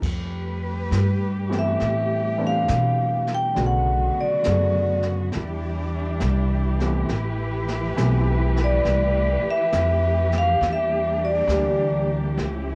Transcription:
0.02 F2 G3 A3 G4 B4, brush sweep, kick, snare, crash
0.91 G2, snare, hi-hat pedal
1.50 E3 A3 B3 C4 G4, snare
1.59 E5
1.80 A2, brush sweep, snare
2.37 E3 A3 B3 C4 D4
2.47 F5
2.68 B2, snare, hi-hat pedal
3.27 snare
3.34 G5
3.55 B1 C#3 D3 F#3 A3 B3 F#4, brush sweep, snare
3.59 B2 B3 F#4
3.66 F#5
4.17 D5, muted upright bass stroke
4.42 C#3 D3 A3 B3 G#4, snare, hi-hat pedal
4.47 F#2
5.02 snare
5.32 E2 E3 G3 D4 E4 G4, brush sweep, snare
6.20 C2, snare, hi-hat pedal
6.79 E3 A3 B3 C4 G4, snare
7.08 A1 A3 B4, brush sweep, snare
7.68 snare
7.96 B1 E3 A3 B3 C4 G4, snare, hi-hat pedal
8.57 snare
8.64 D5
8.85 C2, brush sweep, snare
9.43 muted upright bass stroke
9.51 E5
9.73 F2, snare, hi-hat pedal
10.32 snare
10.38 F5
10.61 E2 G3 A#3 D4, brush sweep, snare
10.72 E5
11.25 D5
11.48 D2 E3 G3 A#3, snare, hi-hat pedal
11.52 D4 G4
12.37 C#2 F3 A3 C#4 E4, brush sweep, snare

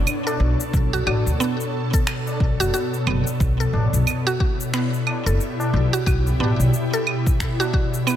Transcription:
Already playing: B2 B3 D4 E4 A4 C#5
0.07 cabasa, claves
0.27 A4, tabla na, cabasa
0.40 B1, tabla tin
0.60 cabasa
0.73 B1, kick, cabasa
0.93 F#4, tabla ge, cabasa
1.06 A1 F#4, tabla na, tabla tin, claves
1.26 D2, cabasa
1.40 B3, cabasa
1.60 cabasa
1.93 A4, kick, cabasa
2.07 finger snap, cabasa, claves
2.27 tabla na, cabasa
2.40 B1, kick, tabla tin
2.60 F#1 F#4, cabasa
2.74 F#4, cabasa
2.94 cabasa
3.07 F#1 B3, tabla tin, claves
3.26 tabla tin, cabasa
3.40 B1, kick, cabasa
3.60 A4, tabla ge, cabasa
3.65 E4
3.73 A1, tabla na, tabla tin, tabla ge
3.93 B1, cabasa
4.07 cabasa, claves
4.27 F#4, cabasa
4.40 F#4, kick
4.60 cabasa
4.74 B3 G4, finger snap, tabla tin, cabasa
4.94 cabasa
5.07 tabla na, tabla tin, claves
5.26 F#1 A4, cabasa
5.41 cabasa
5.60 tabla na, cabasa
5.73 B1, tabla tin
5.93 F#4, cabasa
6.06 B1 F#4, kick, cabasa, claves
6.27 tabla ge, cabasa
6.40 A1 B3, tabla na, tabla tin
6.59 B1, cabasa
6.74 cabasa
6.93 A4, cabasa
7.07 claves
7.27 kick, cabasa
7.40 finger snap, kick, cabasa
7.60 F#4, tabla na, cabasa
7.73 F#4, kick, tabla tin
7.94 cabasa
8.07 B3, cabasa, claves

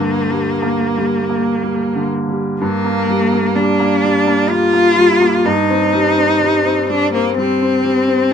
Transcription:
Already playing: G2 D3 A#3
0.30 G3
0.62 A#3
0.96 G3
1.29 A#3
1.63 G3
1.95 D3
2.29 G3
2.61 G2 A#3
2.85 A#3
3.09 G3
3.32 A#3
3.55 G3 D4
3.79 A#3
4.04 G3
4.27 A#3
4.50 G3 F4
4.73 A#3
4.97 G3
5.21 A#3
5.45 G2 D#4
5.70 C4
5.93 G3
6.17 C4
6.42 G3
6.65 C4
6.89 G3 D4
7.13 A#3 C4
7.37 G3 C4
7.62 C4
7.84 G3
8.08 C4

